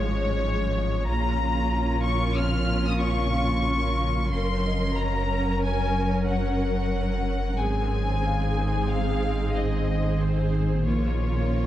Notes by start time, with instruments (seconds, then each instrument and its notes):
Already playing: sub bass G#1, cello section G#2, viola section F3 G#3, ambient pad F3 C#4 G#4 C#5, violin section C#5
1.07 sub bass A#1, cello section A#2, ambient pad C#3 F3 A#4 F5, viola section C#4 F4, violin section A#5
2.05 violin section C#6
2.37 felt piano C4 A#4, violin section F6
2.87 violin section D#6
3.02 violin section C#6
3.37 felt piano C#4 F5
4.32 sub bass F#1, cello section F#2, ambient pad F#3 C#4 A#4 C#5, viola section C#4 A#4, violin section C6
4.66 felt piano D#5
4.98 violin section A#5
5.63 violin section G#5
6.29 violin section F#5
7.59 sub bass G#1, cello section G#2, ambient pad D#3 D#4 G#4 C5, viola section C4 G#4, violin section G#5
8.25 felt piano F5
8.90 violin section F5
9.56 violin section D#5
10.22 violin section C5
10.85 sub bass A#1, cello section A#2, ambient pad F3 C#4 A#4 C#5, viola section A#3 F4, violin section C#5